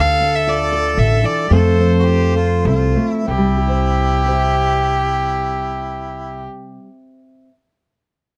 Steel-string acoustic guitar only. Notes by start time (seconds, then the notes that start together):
Already playing: D3 A4
0.21 D4
0.47 F4
0.72 A4
0.97 D3
1.23 E3
1.50 F3 A3 C4 F4 A4
1.78 C4
2.07 F4
2.36 A4
2.66 C4
2.96 A3
3.28 C3
3.38 G3
3.48 E4
3.57 G4
3.67 C5
4.26 C5
4.31 E5